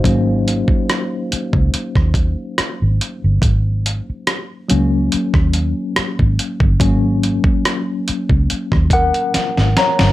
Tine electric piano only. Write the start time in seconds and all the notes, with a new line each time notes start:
Already playing: D#4 F#4 C5 D#5 F5
0.04 F#3 A#3 C#4
4.69 F#3 A#3 C#4
6.80 F#3 A#3 C#4
8.93 A#4 F#5
9.78 C#5 A#5